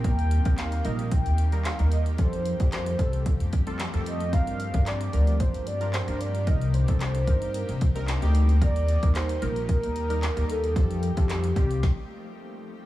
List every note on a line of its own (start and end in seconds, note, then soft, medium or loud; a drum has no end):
0.00 2.15 D#3 medium
0.00 2.15 G4 medium
0.04 0.39 D#2 loud
0.04 0.32 G3 medium
0.04 2.17 G3 medium
0.04 0.32 A#3 medium
0.04 2.17 A#3 medium
0.04 0.32 D#4 medium
0.04 0.32 A#4 medium
0.04 0.60 G5 loud
0.04 kick loud
0.04 closed hi-hat medium
0.19 closed hi-hat medium
0.31 closed hi-hat medium
0.45 0.73 G3 medium
0.45 0.73 A#3 medium
0.45 0.73 D#4 medium
0.45 0.73 A#4 medium
0.45 kick loud
0.45 closed hi-hat medium
0.58 0.86 F5 loud
0.58 snare medium
0.58 clap loud
0.58 closed hi-hat medium
0.72 closed hi-hat medium
0.85 1.19 A#1 medium
0.85 1.31 G3 medium
0.85 1.31 A#3 medium
0.85 1.31 D#4 medium
0.85 1.31 A#4 medium
0.85 1.13 D#5 loud
0.85 closed hi-hat medium
0.99 closed hi-hat soft
1.12 1.65 G5 loud
1.12 kick medium
1.12 closed hi-hat medium
1.26 1.71 D#2 medium
1.26 closed hi-hat soft
1.38 closed hi-hat medium
1.52 1.70 G3 medium
1.52 1.70 A#3 medium
1.52 1.70 D#4 medium
1.52 1.70 A#4 medium
1.52 closed hi-hat medium
1.65 1.77 F5 loud
1.65 snare medium
1.65 clap loud
1.65 closed hi-hat medium
1.79 2.19 D#2 medium
1.79 2.07 G3 medium
1.79 2.07 A#3 medium
1.79 2.07 D#4 medium
1.79 2.07 A#4 medium
1.79 closed hi-hat medium
1.92 2.04 D#5 medium
1.92 closed hi-hat medium
2.06 closed hi-hat soft
2.18 2.53 F2 loud
2.18 6.43 F3 medium
2.18 2.46 G3 medium
2.18 4.31 A3 medium
2.18 4.31 C4 medium
2.18 2.46 C4 medium
2.18 2.46 F4 medium
2.18 4.31 G4 medium
2.18 2.46 A4 medium
2.18 2.69 C5 loud
2.18 kick loud
2.18 closed hi-hat medium
2.33 closed hi-hat soft
2.46 closed hi-hat medium
2.60 2.93 F2 medium
2.60 2.87 G3 medium
2.60 2.87 C4 medium
2.60 2.87 F4 medium
2.60 2.87 G4 medium
2.60 kick medium
2.60 closed hi-hat medium
2.72 3.49 C5 medium
2.72 snare medium
2.72 clap loud
2.72 closed hi-hat medium
2.86 closed hi-hat medium
2.99 3.33 C2 medium
2.99 3.46 G3 medium
2.99 3.46 C4 medium
2.99 3.46 F4 medium
2.99 3.46 A4 medium
2.99 kick medium
2.99 closed hi-hat medium
3.13 closed hi-hat soft
3.26 kick medium
3.26 closed hi-hat medium
3.40 3.85 F2 medium
3.40 closed hi-hat soft
3.53 kick medium
3.53 closed hi-hat medium
3.67 3.85 G3 medium
3.67 3.85 C4 medium
3.67 3.85 F4 medium
3.67 3.85 A4 loud
3.67 closed hi-hat medium
3.79 snare medium
3.79 clap loud
3.79 closed hi-hat medium
3.93 4.33 F2 medium
3.93 4.21 G3 medium
3.93 4.21 C4 medium
3.93 4.21 F4 medium
3.93 4.21 A4 medium
3.93 closed hi-hat soft
4.06 4.35 D#5 loud
4.06 closed hi-hat medium
4.20 closed hi-hat soft
4.33 4.67 G2 loud
4.33 4.60 G3 medium
4.33 10.72 A#3 medium
4.33 4.61 D4 medium
4.33 6.45 D4 medium
4.33 4.61 F4 medium
4.33 10.72 G4 medium
4.33 4.61 A#4 medium
4.33 4.89 F5 loud
4.33 kick loud
4.33 closed hi-hat medium
4.47 closed hi-hat medium
4.60 closed hi-hat medium
4.73 5.07 G2 medium
4.73 5.01 G3 medium
4.73 5.01 D4 medium
4.73 5.01 F4 medium
4.73 5.01 A#4 medium
4.73 kick loud
4.73 closed hi-hat medium
4.86 5.42 D5 loud
4.86 snare medium
4.86 clap loud
4.86 closed hi-hat medium
5.01 closed hi-hat medium
5.13 5.48 D2 medium
5.13 5.60 G3 medium
5.13 5.60 D4 medium
5.13 5.60 F4 medium
5.13 5.60 A#4 medium
5.13 closed hi-hat medium
5.27 closed hi-hat soft
5.40 5.67 C5 loud
5.40 kick medium
5.40 closed hi-hat medium
5.54 5.99 G2 medium
5.54 closed hi-hat soft
5.67 5.96 D5 loud
5.67 closed hi-hat medium
5.81 5.99 G3 medium
5.81 5.99 D4 medium
5.81 5.99 F4 medium
5.81 5.99 A#4 medium
5.81 closed hi-hat soft
5.93 6.22 C5 loud
5.93 snare medium
5.93 clap loud
5.93 closed hi-hat medium
6.07 6.49 G2 medium
6.07 6.35 G3 medium
6.07 6.35 D4 medium
6.07 6.35 F4 medium
6.07 6.35 A#4 medium
6.07 closed hi-hat medium
6.21 6.49 D5 loud
6.21 closed hi-hat medium
6.35 closed hi-hat soft
6.47 6.81 C2 loud
6.47 6.75 G3 medium
6.47 6.75 C4 medium
6.47 8.60 C4 medium
6.47 6.75 D#4 medium
6.47 10.72 D#4 medium
6.47 6.75 A#4 medium
6.47 6.75 D#5 loud
6.47 kick loud
6.47 closed hi-hat medium
6.61 closed hi-hat soft
6.74 7.00 C5 medium
6.74 closed hi-hat medium
6.88 7.21 C2 loud
6.88 7.16 G3 medium
6.88 7.16 C4 medium
6.88 7.16 D#4 medium
6.88 7.16 A4 medium
6.88 kick medium
6.88 closed hi-hat medium
7.01 8.04 C5 medium
7.01 snare medium
7.01 clap loud
7.01 closed hi-hat medium
7.15 closed hi-hat medium
7.27 7.62 G2 medium
7.27 7.74 G3 medium
7.27 7.74 C4 medium
7.27 7.74 D#4 medium
7.27 7.74 A#4 medium
7.27 kick medium
7.27 closed hi-hat medium
7.42 closed hi-hat soft
7.54 closed hi-hat medium
7.69 8.14 C2 medium
7.69 closed hi-hat soft
7.81 kick medium
7.81 closed hi-hat medium
7.95 8.13 G3 medium
7.95 8.13 C4 medium
7.95 8.13 D#4 medium
7.95 8.13 A#4 loud
7.95 closed hi-hat medium
8.08 snare loud
8.08 clap loud
8.08 closed hi-hat medium
8.22 8.62 D2 medium
8.22 8.50 G3 medium
8.22 8.50 C4 medium
8.22 8.50 D#4 medium
8.22 8.50 G4 loud
8.22 closed hi-hat medium
8.35 closed hi-hat medium
8.49 closed hi-hat soft
8.61 8.96 D#2 loud
8.61 8.89 G3 medium
8.61 10.74 G3 medium
8.61 8.89 A#3 medium
8.61 8.89 D#4 medium
8.61 8.89 A#4 medium
8.61 9.17 D5 loud
8.61 kick loud
8.61 closed hi-hat medium
8.76 closed hi-hat medium
8.88 closed hi-hat medium
9.02 9.36 D#2 medium
9.02 9.30 G3 medium
9.02 9.30 A#3 medium
9.02 9.30 D#4 medium
9.02 9.30 A#4 medium
9.02 kick medium
9.02 closed hi-hat medium
9.15 9.44 C5 loud
9.15 snare medium
9.15 clap loud
9.15 closed hi-hat medium
9.29 closed hi-hat medium
9.42 9.76 A#1 medium
9.42 9.88 G3 medium
9.42 9.88 A#3 medium
9.42 9.88 D#4 medium
9.42 9.88 A#4 medium
9.42 9.69 A#4 loud
9.42 closed hi-hat medium
9.56 closed hi-hat soft
9.69 10.45 A#4 loud
9.69 kick medium
9.69 closed hi-hat medium
9.83 10.28 D#2 medium
9.83 closed hi-hat medium
9.96 closed hi-hat medium
10.09 10.27 G3 medium
10.09 10.28 A#3 medium
10.09 10.28 D#4 medium
10.09 10.28 A#4 medium
10.09 closed hi-hat medium
10.23 snare loud
10.23 clap loud
10.23 closed hi-hat medium
10.36 10.76 D#2 medium
10.36 10.64 G3 medium
10.36 10.64 A#3 medium
10.36 10.64 D#4 medium
10.36 10.64 A#4 medium
10.36 closed hi-hat medium
10.49 10.74 A4 medium
10.49 closed hi-hat medium
10.64 closed hi-hat soft
10.76 11.10 F2 loud
10.76 11.82 F3 medium
10.76 11.03 G3 medium
10.76 11.82 A3 medium
10.76 11.03 C4 medium
10.76 11.82 C4 medium
10.76 11.04 F4 medium
10.76 11.82 G4 medium
10.76 12.60 G4 loud
10.76 11.04 A4 medium
10.76 kick loud
10.76 closed hi-hat medium
10.91 closed hi-hat soft
11.03 closed hi-hat medium
11.17 11.50 F2 loud
11.17 11.44 G3 medium
11.17 11.44 C4 medium
11.17 11.44 F4 medium
11.17 11.45 A4 medium
11.17 kick loud
11.17 closed hi-hat medium
11.30 snare medium
11.30 clap loud
11.30 closed hi-hat medium
11.44 closed hi-hat medium
11.56 11.79 C2 medium
11.56 11.83 G3 medium
11.56 11.83 C4 medium
11.56 11.83 F4 medium
11.56 11.83 G4 loud
11.56 kick medium
11.56 closed hi-hat medium
11.71 closed hi-hat medium
11.83 kick loud
11.83 snare medium